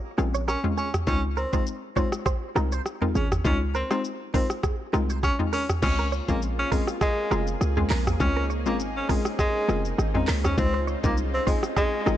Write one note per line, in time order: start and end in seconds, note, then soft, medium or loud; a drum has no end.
0.18 0.57 A#1 medium
0.18 0.37 G#3 medium
0.18 0.37 C4 medium
0.18 0.37 C#4 medium
0.18 0.37 F4 medium
0.18 0.29 A#4 medium
0.18 cross-stick medium
0.18 shaker soft
0.34 0.43 C#5 medium
0.34 shaker medium
0.48 0.62 C#4 medium
0.48 0.58 A#4 medium
0.48 cross-stick medium
0.48 shaker medium
0.64 0.81 G#3 medium
0.64 0.81 C4 medium
0.64 0.81 C#4 medium
0.64 0.81 F4 medium
0.64 mid tom medium
0.78 0.92 C#4 medium
0.78 0.88 G#4 medium
0.78 shaker medium
0.94 cross-stick loud
0.94 mid tom medium
0.94 shaker medium
1.07 1.46 C#2 loud
1.07 1.26 G#3 medium
1.07 1.26 C4 medium
1.07 1.22 C#4 loud
1.07 1.26 D#4 medium
1.07 1.26 F4 loud
1.07 kick loud
1.07 shaker medium
1.37 1.51 C4 medium
1.37 1.48 A#4 medium
1.37 shaker soft
1.53 1.70 G#3 medium
1.53 1.70 C4 medium
1.53 1.65 C4 medium
1.53 1.70 D#4 medium
1.53 1.70 F4 medium
1.53 1.62 C5 medium
1.53 kick loud
1.53 shaker medium
1.67 shaker medium
1.96 2.15 G#3 medium
1.96 2.15 C4 medium
1.96 2.11 C4 medium
1.96 2.15 D#4 medium
1.96 2.15 F4 medium
1.96 2.07 C#5 medium
1.96 kick medium
1.96 shaker medium
2.12 cross-stick medium
2.12 shaker medium
2.26 2.37 C5 medium
2.26 kick loud
2.26 cross-stick loud
2.26 shaker medium
2.55 2.81 C2 medium
2.55 2.75 G#3 medium
2.55 2.75 C4 medium
2.55 2.75 D#4 medium
2.55 2.75 F4 medium
2.55 2.72 A#4 medium
2.55 cross-stick loud
2.55 shaker soft
2.72 2.81 C5 medium
2.72 shaker medium
2.86 cross-stick medium
2.86 shaker medium
3.01 3.18 G#3 medium
3.01 3.18 C4 medium
3.01 3.18 D#4 medium
3.01 3.19 F4 medium
3.01 3.11 A#4 medium
3.01 mid tom medium
3.15 3.40 G#1 loud
3.15 3.30 C#4 medium
3.15 3.26 G#4 medium
3.15 shaker medium
3.32 cross-stick loud
3.32 mid tom medium
3.32 shaker medium
3.44 3.83 C#2 loud
3.44 3.64 G#3 medium
3.44 3.64 C4 medium
3.44 3.59 C#4 medium
3.44 3.64 D#4 medium
3.44 3.64 F4 loud
3.44 kick loud
3.44 shaker medium
3.75 3.89 C4 medium
3.75 3.85 A#4 medium
3.75 shaker soft
3.91 4.07 G#3 medium
3.91 4.07 C4 medium
3.91 4.03 C4 medium
3.91 4.08 D#4 medium
3.91 4.08 F4 medium
3.91 4.00 C5 medium
3.91 cross-stick loud
3.91 shaker medium
4.04 shaker medium
4.34 4.53 G#3 medium
4.34 4.53 C4 medium
4.34 4.48 C4 medium
4.34 4.53 D#4 medium
4.34 4.53 F4 medium
4.34 4.45 A#4 medium
4.34 kick loud
4.34 open hi-hat medium
4.34 shaker medium
4.50 cross-stick medium
4.50 shaker medium
4.63 4.74 G#4 medium
4.63 kick loud
4.63 cross-stick loud
4.63 shaker medium
4.93 5.32 C2 medium
4.93 5.12 G#3 medium
4.93 5.12 C4 medium
4.93 5.12 D#4 medium
4.93 5.13 F4 medium
4.93 5.10 A#4 medium
4.93 cross-stick loud
4.93 shaker soft
5.10 5.18 C5 medium
5.10 shaker medium
5.23 5.37 C#4 medium
5.23 5.34 G#4 medium
5.23 kick loud
5.23 cross-stick medium
5.23 shaker medium
5.39 5.56 G#3 medium
5.39 5.56 C4 medium
5.39 5.56 D#4 medium
5.39 5.56 F4 medium
5.39 mid tom medium
5.53 5.67 C#4 medium
5.53 5.63 A#4 medium
5.53 open hi-hat medium
5.53 shaker medium
5.70 cross-stick loud
5.70 mid tom medium
5.70 shaker medium
5.82 6.21 C#2 loud
5.82 6.01 G#3 medium
5.82 10.54 A#3 medium
5.82 6.01 C4 medium
5.82 12.17 C4 medium
5.82 12.17 C#4 medium
5.82 6.02 C#4 medium
5.82 6.08 C#4 loud
5.82 8.18 F4 medium
5.82 6.02 F4 loud
5.82 10.54 G#4 medium
5.82 kick loud
5.82 crash loud
5.82 shaker medium
5.99 6.08 A#4 medium
6.12 6.23 C#5 medium
6.12 shaker soft
6.28 6.65 A#1 medium
6.28 6.45 G#3 medium
6.28 6.40 A#3 medium
6.28 6.45 C4 medium
6.28 6.45 C#4 medium
6.28 6.45 F4 medium
6.28 kick loud
6.28 shaker medium
6.42 shaker medium
6.59 6.70 C#4 medium
6.71 6.91 G#3 medium
6.71 6.86 G#3 medium
6.71 6.91 C4 medium
6.71 6.91 C#4 medium
6.71 6.91 F4 medium
6.71 6.82 A#4 medium
6.71 kick loud
6.71 open hi-hat medium
6.71 shaker medium
6.87 cross-stick medium
6.87 shaker medium
7.01 7.45 G#3 loud
7.01 7.12 G#4 medium
7.01 kick loud
7.01 cross-stick loud
7.01 shaker medium
7.31 7.56 F1 medium
7.31 7.50 G#3 medium
7.31 7.50 C4 medium
7.31 7.50 C#4 medium
7.31 7.50 F4 medium
7.31 7.42 A#4 medium
7.31 cross-stick loud
7.31 shaker soft
7.47 shaker medium
7.61 7.86 C#2 loud
7.61 cross-stick medium
7.61 shaker medium
7.77 7.94 G#3 medium
7.77 7.94 C4 medium
7.77 7.94 C#4 medium
7.77 7.94 F4 medium
7.77 7.86 G#4 medium
7.77 mid tom medium
7.90 8.15 A#1 loud
7.90 8.01 A#4 medium
7.90 clap medium
7.90 open hi-hat medium
7.90 shaker medium
8.07 cross-stick loud
8.07 mid tom medium
8.07 shaker medium
8.20 8.68 C#2 loud
8.20 8.39 G#3 medium
8.20 8.39 C4 medium
8.20 8.39 C#4 medium
8.20 8.46 C#4 loud
8.20 12.17 D#4 medium
8.20 8.39 F4 loud
8.20 kick loud
8.20 shaker medium
8.37 8.45 A#4 medium
8.50 8.61 C#5 medium
8.50 shaker soft
8.66 9.02 G#1 medium
8.66 8.83 G#3 medium
8.66 8.78 A#3 medium
8.66 8.83 C4 medium
8.66 8.83 C#4 medium
8.66 8.83 F4 medium
8.66 shaker medium
8.80 shaker medium
8.97 9.08 C#4 medium
9.09 9.28 G#3 medium
9.09 9.24 G#3 medium
9.09 9.28 C4 medium
9.09 9.28 C#4 medium
9.09 9.28 F4 medium
9.09 9.20 A#4 medium
9.09 kick loud
9.09 open hi-hat medium
9.09 shaker medium
9.25 cross-stick medium
9.25 shaker medium
9.39 9.83 G#3 loud
9.39 kick loud
9.39 cross-stick loud
9.39 shaker medium
9.68 9.93 F1 medium
9.68 9.87 G#3 medium
9.68 9.88 C4 medium
9.68 9.88 C#4 medium
9.68 9.88 F4 medium
9.68 9.79 A#4 medium
9.68 cross-stick loud
9.68 shaker soft
9.85 shaker medium
9.98 10.23 G#1 loud
9.98 10.09 G#4 medium
9.98 cross-stick medium
9.98 shaker medium
10.14 10.31 G#3 medium
10.14 10.31 C4 medium
10.14 10.31 C#4 medium
10.14 10.27 D#4 medium
10.14 10.31 F4 medium
10.14 mid tom medium
10.28 10.53 C#2 medium
10.28 10.39 A#4 medium
10.28 clap loud
10.28 open hi-hat medium
10.28 shaker medium
10.44 10.56 C#4 medium
10.44 10.53 C#5 medium
10.44 cross-stick loud
10.44 mid tom medium
10.44 shaker medium
10.57 10.96 C#2 loud
10.57 10.77 G#3 medium
10.57 12.17 G#3 medium
10.57 10.77 C4 medium
10.57 10.84 C4 loud
10.57 10.77 D#4 medium
10.57 12.17 F4 medium
10.57 10.77 F4 loud
10.57 kick loud
10.57 shaker medium
10.74 10.83 C5 medium
10.87 10.98 C#5 medium
10.87 shaker soft
11.04 11.40 C2 medium
11.04 11.20 G#3 medium
11.04 11.16 A#3 medium
11.04 11.20 C4 medium
11.04 11.20 D#4 medium
11.04 11.21 F4 medium
11.04 kick loud
11.04 shaker medium
11.17 shaker medium
11.34 11.45 C4 medium
11.46 11.66 G#3 medium
11.46 11.61 G#3 medium
11.46 11.66 C4 medium
11.46 11.66 D#4 medium
11.46 11.66 F4 medium
11.46 11.57 C5 medium
11.46 kick loud
11.46 open hi-hat medium
11.46 shaker medium
11.63 cross-stick medium
11.63 shaker medium
11.76 12.17 G#3 loud
11.76 11.87 G#4 medium
11.76 kick loud
11.76 cross-stick loud
11.76 shaker medium
12.06 12.17 G#1 medium
12.06 12.17 G#3 medium
12.06 12.17 C4 medium
12.06 12.17 D#4 medium
12.06 12.17 F4 medium
12.06 12.17 A#4 medium
12.06 cross-stick loud
12.06 shaker soft